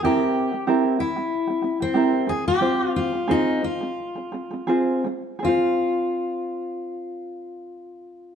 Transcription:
X:1
M:4/4
L:1/16
Q:"Swing 16ths" 1/4=86
K:Fm
V:1 name="Steel-string acoustic guitar"
G4 z2 =E4- E C3 A G- | G2 F2 E2 F8 z2 | F16 |]
V:2 name="Ukulele"
[C=EGB]3 [CG] [CEGB]2 [CG] [CG]2 [CG] [CG] [CG] [CEGB]2 [CA]2 | [CFc]3 [CA] [CFAc]2 [CA] [CA]2 [CA] [CA] [CA] [CFAc]2 [CA]2 | [CFAc]16 |]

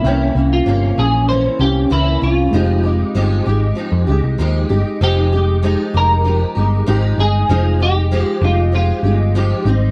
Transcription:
X:1
M:4/4
L:1/16
Q:1/4=97
K:Fm
V:1 name="Clean electric guitar"
=E3 F3 A2 c2 G2 E2 F2- | F12 z4 | G6 B8 A2- | A2 G4 F2 F4 z4 |]
V:2 name="Reed electric piano"
[B,D=eg]16 | [A,CEG]16 | z16 | z16 |]
V:3 name="Steel-string acoustic guitar"
[C,=E,B,D]2 [E,B,D]2 [C,B,D]2 [E,B,D]2 [C,E,B,D]2 [E,B,D]2 [C,E,B,D]2 [B,D]2 | [F,A,EG]2 [A,EG]2 [F,A,EG]2 [A,EG]2 [F,A,EG]2 [A,EG]2 [F,A,EG]2 [A,EG]2 | [F,A,EG]2 [A,EG]2 [F,A,EG]2 [A,EG]2 [F,A,EG]2 [A,EG]2 [F,A,EG]2 [A,E]2 | [F,A,E]2 [A,EG]2 [F,A,EG]2 [A,EG]2 [F,A,EG]2 [A,EG]2 [F,A,EG]2 [G,CE]2 |]
V:4 name="Picked electric bass" clef=bass
C,,2 C,,2 G,,,2 B,,,4 C,,2 D,,2 C,,2 | F,,,4 G,,,2 A,,,2 z F,, D,, C,, E,,2 G,,, z | F,,,4- F,,, z F,,,4 G,,,2 A,,,2 G,,,2 | F,,,4- F,,, z F,,,4 G,,,4 A,,,2 |]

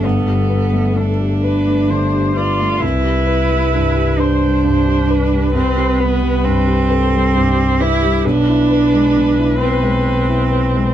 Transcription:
X:1
M:6/8
L:1/16
Q:3/8=44
K:C
V:1 name="Viola"
A6 B2 c2 d2 | B6 c2 c2 B2- | B6 A2 G2 G2 | B12 |]
V:2 name="Cello"
B,4 D6 F2 | E6 D6 | C2 B,2 C6 E2 | D6 C6 |]
V:3 name="Felt piano"
[G,,A,] G B A, D, G B A, D, G B A, | C,, G B G, G,, G B G, G,, G B G, | C,, G B G, G,, G B G, G,, G B G, | B,,, E B ^G, B,, E B G,2 E B G, |]
V:4 name="Double bass" clef=bass
G,,,12 | C,,12- | C,,12 | B,,,12 |]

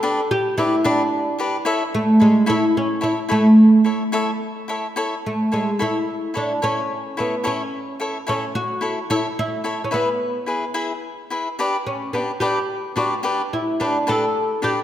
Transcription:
X:1
M:6/8
L:1/16
Q:3/8=73
K:A
V:1 name="Cavaquinho"
[D=GBd]2 z2 [DGBd]2 [DGBd]2 z2 [DGBd]2 | [EAce]2 z2 [EAce]2 [EAce]2 z2 [EAce]2 | [EAce]2 z2 [EAce]2 [EAce]2 z2 [EAce]2 | [EAce]2 z2 [EAce]2 [EAce]2 z2 [EAce]2 |
[EAce]2 z2 [EAce]2 [EAce]2 z2 [EAce]2 | [EAce]2 z2 [EAce]2 [EAce]2 z2 [EAce]2 | [EGBe]2 z2 [EGBe]2 [EGBe]2 z2 [EGBe]2 | [D=GBd]2 z2 [DGBd]2 [DGBd]2 z2 [DGBd]2 |
[D=GBd]2 z2 [DGBd]2 [DGBd]2 z2 [DGBd]2 |]
V:2 name="Oud"
A2 =G2 E2 D4- D/2 z3/2 | z2 A,2 G,2 E2 C2 E2 | A,8- A,2 z2 | z2 A,2 G,2 E4 D2 |
C4 B,2 C6 | C2 F4 E2 E3- E/2 C/2 | B,8- B,2 z2 | z2 C2 B,2 =G4 F2 |
z2 E2 D2 A4 =G2 |]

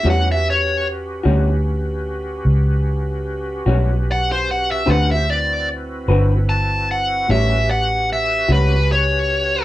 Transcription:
X:1
M:12/8
L:1/16
Q:3/8=50
K:Amix
V:1 name="Lead electric guitar"
f e c2 z16 f =c f e | f e d2 z4 a2 f2 e2 f2 e2 B2 c4 |]
V:2 name="Tonewheel organ"
[CFGB]24 | [C=FG=c]2 [=CE^FB]8- [CEFB]2 [^CFGB]12 |]
V:3 name="Clean electric guitar"
[A,,G,CF]2 z4 [A,,G,CF]2 z8 z2 [A,,G,CF]2 z4 | [D,=CFB]2 z4 [D,CFB]2 z4 [A,,G,^CF]2 z4 [A,,G,CF]2 z4 |]
V:4 name="Fingered electric bass" clef=bass
E,,6 D,,6 C,,6 B,,,6 | D,,6 G,,,6 A,,,6 C,,6 |]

